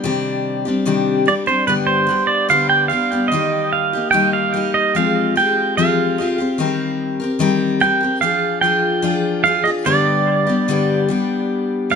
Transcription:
0.04 C3 D#3 G3 C4 D4 G4
0.65 G3 C4 D4 G4
0.86 C3 D#3 G3 C4 D4 G4
1.26 G3 C4 D4 G4 D5
1.46 G3 C4 D4 G4 C5
1.67 G2 D3 G3 B3 D4 G4 B4
1.87 C5
2.07 G3 B3 D4 G4
2.27 D5
2.49 G2 D3 G3 B3 D4 G4 F5
2.69 G5
2.88 G3 B3 D4 F5
2.93 G4
3.12 G3 B3 D4 G4
3.28 D#3 D#5
3.32 G3 A#3 D#4 G4
3.73 F5
3.93 A#3 D#4 G4
4.11 D#3 G3 A#3 D#4 G4 G5
4.33 F5
4.54 G3 A#3 D#4 G4
4.74 D#5
4.95 F3 G#3 C4 F4 G4 F5
5.36 G#3 C4 F4 G4 G5
5.77 F3 G#3 C4 F4 G4 F5
6.18 G#3 C4 F4 G4
6.38 C4 F4 G4
6.58 D#3 G3 C4 G4 A#4
7.20 C4 G4 A#4
7.39 D#3 G3 C4 G4 A#4
7.80 G3 C4 G4 A#4 G5
8.01 C4 G4 A#4
8.21 F3 D4 F4 G#4 F5
8.61 F3 D4 F4 G5
8.66 G#4
9.02 F3 D4 F4 G#4
9.44 F3 D4 F4 F5
9.48 G#4
9.64 F4 G#4 D#5
9.69 D4
9.85 G2 D3 G3 B3 D4 G4 D5
10.47 G3 B3 D4 G4
10.68 G2 D3 G3 B3 D4 G4
11.08 G3 B3 D4 G4
11.90 G3 B3 D4 F5

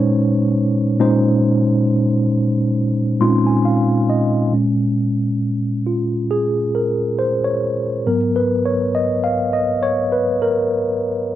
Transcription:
Already playing: A#2 G#3 C#4 D#4 B4 C5 C#5
0.99 A#2 G#3 C#4 D#4 C5
3.20 A#2 G#3 C4 D#4 F4 C6
3.27 C#4
3.47 G#5
3.65 F5
4.10 D#5
4.52 A#2 G#3 C#4
5.87 F4
6.31 G#4
6.75 A#4
7.19 C5
7.44 C#5
8.06 G#2 F#3 B3 A#4
8.36 B4
8.66 C#5
8.95 D#5
9.24 F5
9.53 D#5
9.83 C#5
10.12 B4
10.42 A#4

